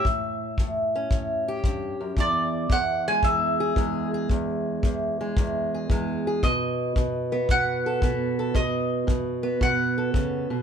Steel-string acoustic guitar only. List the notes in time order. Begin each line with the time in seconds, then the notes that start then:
0.06 A2
0.60 A2
0.96 C#4
1.11 A2
1.48 G4
1.64 G2
2.01 F#2
2.17 E2
2.70 E2
3.08 G#3
3.24 E2
3.60 G#4
3.77 E2 G#3
4.14 G#4
4.30 E2
4.84 E2
5.21 G#3
5.37 E2
5.74 G#4
5.90 E2 G#3
6.27 G#4
6.43 B2
6.96 B2
7.32 B3
7.50 B2
7.86 A4
8.03 B2 B3
8.39 A4
8.54 B2
9.07 B2
9.43 B3
9.61 B2
9.98 A4
10.14 C#3
10.50 B2